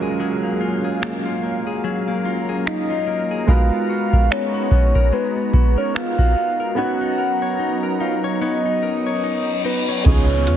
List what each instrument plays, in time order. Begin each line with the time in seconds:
Already playing: clean electric guitar F#3 F4, analog synth pad F#3 A#3 C#4 G#4 F5, grand piano G#3 C#4 F4 F#4 A#4, downlifter
0.02 clean electric guitar G#4
0.20 clean electric guitar F#3 G#4
0.43 clean electric guitar A#3
0.61 clean electric guitar F4
0.85 clean electric guitar G#4
1.02 clean electric guitar A#3, finger snap
1.26 clean electric guitar F4
1.42 clean electric guitar A#3, analog synth pad A#5
1.67 clean electric guitar G#4
1.84 clean electric guitar F#3 G#4
2.08 clean electric guitar A#3
2.25 clean electric guitar F4
2.49 clean electric guitar G#4
2.66 clean electric guitar A#3, soft synth lead D#5, finger snap
2.90 clean electric guitar F4
3.07 clean electric guitar A#3
3.31 clean electric guitar G#4
3.46 grand piano G#3 B3 D#4 F#4 B4, analog synth pad G#3 B3 D#4 F#4, clean electric guitar G#3 A#4, soft synth lead F5, kick
3.72 clean electric guitar B3
3.89 clean electric guitar F#4
4.13 clean electric guitar A#4, kick
4.31 clean electric guitar B3, soft synth lead C#5, finger snap
4.54 clean electric guitar F#4
4.71 clean electric guitar B3, kick
4.95 clean electric guitar A#4, kick
5.13 clean electric guitar G#3, soft synth lead B4
5.36 clean electric guitar B3
5.54 clean electric guitar F#4, kick
5.78 clean electric guitar A#4, soft synth lead C#5
5.95 clean electric guitar B3, soft synth lead F5, finger snap
6.19 clean electric guitar F#4, kick
6.36 clean electric guitar B3
6.60 clean electric guitar A#4
6.75 analog synth pad F#3 B3 C#4 A#5, grand piano B3 C#4 D#4 F#4 B4, clean electric guitar B3 C#5, soft synth lead F#5
7.01 clean electric guitar D#4
7.18 clean electric guitar A#4
7.42 clean electric guitar C#5
7.59 clean electric guitar D#4
7.83 clean electric guitar A#4
8.00 clean electric guitar D#4, soft synth lead F5
8.24 clean electric guitar C#5
8.41 clean electric guitar B3 C#5, soft synth lead D#5, reverse cymbal
8.65 clean electric guitar D#4
8.83 clean electric guitar A#4
9.07 clean electric guitar C#5
9.24 clean electric guitar D#4
9.65 clean electric guitar D#4, soft synth lead B4
9.89 clean electric guitar C#5
10.04 808-style bass C#2, analog synth pad C#3 F3 G#3 B3 F4, clean electric guitar C#3 G#4, grand piano B3 C#4 D#4 F4 G#4, soft synth lead C#5, kick, closed hi-hat, crash, downlifter
10.30 closed hi-hat
10.47 808-style bass F2, clean electric guitar B3, synth pluck F4, closed hi-hat